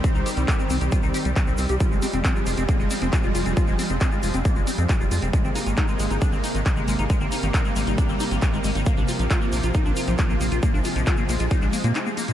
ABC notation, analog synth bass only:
X:1
M:4/4
L:1/16
Q:1/4=136
K:Ablyd
V:1 name="Analog synth bass" clef=bass
z C,, z C,, z2 C,, C,, z C,, z C,, z C,, C,, C,, | z F,,, z F,,, z2 F,,, F,,, z F,,, z F,,, z F,,, F,,, F,,, | z F,,, z F,,, z2 F,,, F,,, z F,,, z F,, z F,,, F,, F,,, | z A,,, z A,,, z2 A,,, A,,, z A,,, z A,,, z A,,, A,,, A,,, |
z A,,, z A,,, z2 A,,, A,,, z A,,, z A,,, z A,,, A,,, A,,, | z B,,, z B,,, z2 B,,, B,,, z B,,, z B,,, z B,,, B,,, B,,, | z B,,, z B,,, z2 B,,, B,,, z B,,, z B,, z4 |]